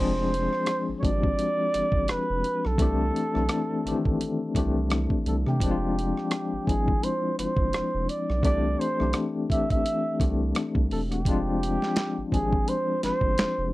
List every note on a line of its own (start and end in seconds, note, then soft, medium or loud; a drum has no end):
0.00 0.48 F1 medium
0.00 0.77 F3 medium
0.00 0.77 G#3 medium
0.00 0.78 C4 medium
0.00 0.79 D4 medium
0.00 0.79 G#4 medium
0.00 0.93 C5 medium
0.34 closed hi-hat medium
0.53 cross-stick soft
0.66 cross-stick loud
0.66 closed hi-hat medium
0.89 0.94 G#1 soft
0.99 2.08 F3 medium
0.99 2.09 G#3 medium
0.99 1.05 C#5 medium
0.99 kick medium
1.04 1.35 G#1 medium
1.04 2.09 C4 medium
1.04 2.09 D4 medium
1.04 1.11 F#4 soft
1.04 2.12 D5 loud
1.04 closed hi-hat soft
1.12 2.13 G4 medium
1.23 kick medium
1.39 closed hi-hat medium
1.74 1.82 G1 soft
1.74 cross-stick soft
1.74 closed hi-hat medium
1.92 2.07 G1 medium
1.92 kick medium
2.08 2.18 F1 soft
2.08 2.68 B4 medium
2.08 cross-stick loud
2.08 closed hi-hat medium
2.30 2.43 F1 medium
2.44 closed hi-hat medium
2.65 2.78 B1 medium
2.65 4.77 A4 medium
2.65 cross-stick soft
2.78 3.11 C2 medium
2.78 3.19 E3 medium
2.78 3.19 A3 medium
2.78 3.20 C4 medium
2.78 3.20 D4 medium
2.78 3.21 G4 medium
2.78 kick medium
2.78 closed hi-hat medium
3.16 closed hi-hat medium
3.34 3.49 B1 medium
3.34 3.73 E3 medium
3.34 3.73 A3 medium
3.34 3.74 C4 medium
3.34 3.74 D4 medium
3.34 3.75 A4 medium
3.34 cross-stick soft
3.49 cross-stick medium
3.49 closed hi-hat medium
3.85 3.93 A1 soft
3.85 3.92 D#3 medium
3.85 4.41 A3 medium
3.85 4.41 C4 medium
3.85 4.41 D4 medium
3.85 4.42 G4 medium
3.85 closed hi-hat soft
3.91 4.44 E3 medium
4.05 4.19 A1 medium
4.05 kick medium
4.21 closed hi-hat medium
4.55 5.07 C2 medium
4.55 5.36 E3 medium
4.55 5.36 A3 medium
4.55 5.37 C4 medium
4.55 5.37 D4 medium
4.55 5.38 G4 medium
4.55 kick medium
4.55 cross-stick soft
4.55 closed hi-hat medium
4.90 cross-stick loud
4.90 closed hi-hat medium
5.10 kick medium
5.26 5.45 C2 medium
5.26 5.36 A4 medium
5.26 closed hi-hat medium
5.46 5.60 C3 medium
5.46 6.69 G4 medium
5.46 cross-stick soft
5.60 6.12 F1 loud
5.60 6.42 F3 medium
5.60 6.42 G#3 medium
5.60 6.43 C4 medium
5.60 6.43 D4 medium
5.60 5.70 G4 medium
5.60 kick medium
5.60 closed hi-hat medium
5.71 6.47 F4 medium
5.99 closed hi-hat medium
6.17 cross-stick soft
6.31 cross-stick loud
6.31 closed hi-hat medium
6.53 6.59 G#1 soft
6.67 7.00 G#1 medium
6.67 7.73 F3 medium
6.67 7.73 G#3 medium
6.67 7.74 C4 soft
6.67 7.74 D4 soft
6.67 7.75 E4 medium
6.67 7.05 G#4 medium
6.67 kick medium
6.67 closed hi-hat soft
6.88 kick medium
7.03 7.38 C5 medium
7.03 closed hi-hat medium
7.39 7.46 G1 soft
7.39 8.11 C5 medium
7.39 cross-stick soft
7.39 closed hi-hat medium
7.57 7.71 G1 medium
7.57 kick medium
7.73 7.82 F1 soft
7.73 cross-stick loud
7.73 closed hi-hat medium
7.95 8.08 F1 medium
8.09 8.44 D5 medium
8.09 closed hi-hat medium
8.30 8.43 B1 medium
8.30 cross-stick soft
8.43 8.76 C2 medium
8.43 8.83 E3 medium
8.43 8.84 A3 medium
8.43 8.84 C4 medium
8.43 8.85 D4 medium
8.43 8.85 G4 loud
8.43 8.81 D5 loud
8.43 kick medium
8.43 closed hi-hat medium
8.80 9.24 C5 medium
8.80 closed hi-hat medium
8.99 9.14 B1 medium
8.99 9.38 E3 medium
8.99 9.39 A3 medium
8.99 9.39 C4 medium
8.99 9.39 D4 medium
8.99 9.40 G4 medium
8.99 cross-stick soft
9.13 cross-stick medium
9.13 closed hi-hat medium
9.50 9.58 A1 soft
9.50 10.05 E3 medium
9.50 10.06 A3 medium
9.50 10.06 C4 medium
9.50 10.06 D4 medium
9.50 10.07 G4 medium
9.50 9.69 E5 medium
9.50 kick medium
9.50 closed hi-hat soft
9.70 9.84 A1 medium
9.70 10.37 E5 loud
9.70 kick medium
9.70 closed hi-hat soft
9.86 closed hi-hat medium
10.20 10.53 C2 medium
10.20 11.01 E3 medium
10.20 11.01 A3 medium
10.20 11.02 C4 medium
10.20 11.02 D4 medium
10.20 11.03 G4 medium
10.20 kick medium
10.20 cross-stick soft
10.20 closed hi-hat medium
10.55 cross-stick loud
10.55 closed hi-hat medium
10.75 10.89 C2 medium
10.75 kick medium
10.91 11.24 E1 medium
10.91 11.01 A4 medium
10.91 open hi-hat soft
11.12 12.28 G4 medium
11.12 cross-stick soft
11.12 closed hi-hat soft
11.25 11.77 F1 medium
11.25 12.07 F3 medium
11.25 12.07 G#3 medium
11.25 12.08 C4 medium
11.25 12.08 D4 medium
11.25 kick loud
11.25 closed hi-hat medium
11.29 12.08 F4 medium
11.63 closed hi-hat medium
11.82 snare soft
11.96 snare medium
11.96 closed hi-hat medium
12.18 12.24 G#1 soft
12.31 12.64 G#1 medium
12.31 13.38 F3 medium
12.31 13.38 G#3 soft
12.31 13.39 C4 soft
12.31 13.39 D4 medium
12.31 12.41 G4 medium
12.31 12.70 G#4 medium
12.31 kick medium
12.31 closed hi-hat soft
12.42 13.43 G#4 medium
12.53 kick medium
12.68 13.03 C5 medium
12.68 closed hi-hat medium
13.03 13.11 G1 soft
13.03 13.73 C5 medium
13.03 snare soft
13.03 closed hi-hat medium
13.21 13.36 G1 medium
13.21 kick medium
13.38 13.46 F1 soft
13.38 snare loud
13.38 closed hi-hat medium
13.58 13.72 F1 medium